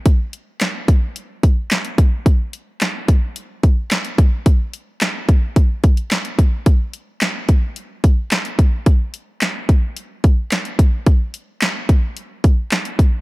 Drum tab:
HH |x-x-x-x-x-x-xxx-|x-x-x-x-x-x-xxx-|x-x-x-x-x-xxxxx-|x-x-x-x-x-x-xxx-|
CP |----x-------x---|----x-------x---|----x-------x---|----x-------x---|
SD |----o-------o---|----o-------o---|----o-------o---|----o-------o---|
BD |o-----o---o---o-|o-----o---o---o-|o-----o-o-o---o-|o-----o---o---o-|

HH |x-x-x-x-x-x-xxx-|x-x-x-x-x-x-xxx-|
CP |----x-------x---|----x-------x---|
SD |----o-------o---|----o-------o---|
BD |o-----o---o---o-|o-----o---o---o-|